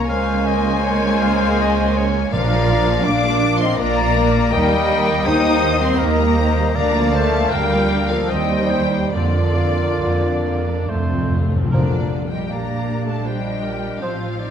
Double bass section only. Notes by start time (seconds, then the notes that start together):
0.08 C#2
2.32 A#1
3.05 A#1
3.79 A#1
4.53 D#2
5.26 D#2
6.00 D#2
6.75 D2
7.52 D2
8.31 D#2
9.14 F2
10.03 F2
10.90 F2
11.73 A#1
14.03 A1